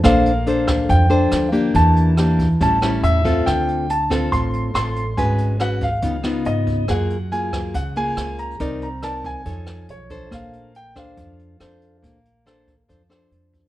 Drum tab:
HH |xxxxxxxx|xxxxxxxx|xxxxxxxx|xxxxxxxx|
SD |r--r--r-|--r--r--|r--r--r-|--r--r--|
BD |o--oo---|o--oo--o|o--oo---|o--oo--o|

HH |xxxxxxxx|xxxxxxxx|xxxxxxxx|xxxxxxxx|
SD |r--r--r-|--r--r--|r--r--r-|--r--r--|
BD |o--oo---|o--oo--o|o--oo---|o--oo--o|